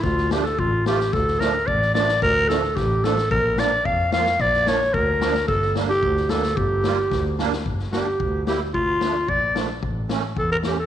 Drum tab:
SD |oooo--oo|ooo--ooo|--ooo-oo|--o---oo|
BD |o---o---|o---o---|o---o---|o---o---|

SD |oooo--oo|oooo-ooo|--o-o-oo|-oo---o-|
BD |o---o---|o---o---|o---o---|o---o---|

SD |--o---o-|--o---o-|
BD |o---o---|o---o---|